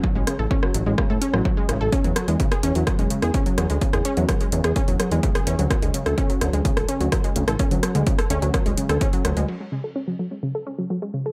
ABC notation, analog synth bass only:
X:1
M:4/4
L:1/16
Q:1/4=127
K:F#m
V:1 name="Analog synth bass" clef=bass
z A,,, z A,,, z2 A,,, A,,, z A,, z A,,, z2 A,,, A,,, | z E,, z E,, z2 E,, E,, z E,,, z E,, z2 E,, D,, | z E,, z E,, z2 E,, E,, z E,,, z E,, z2 E,, D,, | z D,, z D,, z2 D,, D,, z D,,, z D,, z2 D,, A,,, |
z D,, z D,, z2 D,, D,, z D,,, z D,, z2 D,, D,, | z16 |]